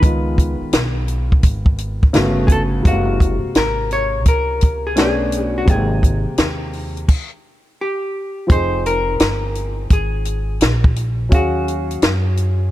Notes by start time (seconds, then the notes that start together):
Already playing: B4
0.00 C#2 D#3 G#3 B3, kick, closed hi-hat
0.05 F4
0.38 kick, closed hi-hat
0.61 muted upright bass stroke
0.73 B1, snare, closed hi-hat
1.08 closed hi-hat
1.32 kick
1.43 G#1, kick, closed hi-hat
1.66 kick
1.78 closed hi-hat
2.03 kick
2.13 G1 C#3 A3 B3 F#4, snare, closed hi-hat
2.47 G#4, kick, closed hi-hat
2.52 A4
2.83 F#1 C3 G#3 A3, kick, closed hi-hat
2.87 F#4 F5
2.93 A#3
3.20 kick, closed hi-hat
3.43 muted upright bass stroke
3.55 G#1 A#4, snare, closed hi-hat
3.91 C#5, closed hi-hat
4.26 C#2 A#4, kick, closed hi-hat
4.61 kick, closed hi-hat
4.87 G#4
4.96 B1 A3 B3 C#4 D4 G#4, snare, closed hi-hat
5.32 closed hi-hat
5.45 F#4
5.58 F#4
5.65 G#1 C3 G#3 A#3, kick, closed hi-hat
5.70 G#4 G5
6.03 kick, closed hi-hat
6.26 muted upright bass stroke
6.38 D#2, snare, closed hi-hat
6.73 open hi-hat
6.97 closed hi-hat
7.08 kick, crash
7.81 G4
8.47 F1 F3 C4 D#4, kick, closed hi-hat
8.52 G#4 C5
8.86 A#4, closed hi-hat
9.20 G1, snare, closed hi-hat
9.55 closed hi-hat
9.90 G#1 G#4, kick, closed hi-hat
10.25 closed hi-hat
10.61 A#1, snare, closed hi-hat
10.84 kick
10.96 closed hi-hat
11.29 D#2 F#3 C#4 F5, kick, closed hi-hat
11.34 F#4 G#4
11.68 closed hi-hat
11.91 closed hi-hat
12.02 F#2, snare, closed hi-hat
12.37 closed hi-hat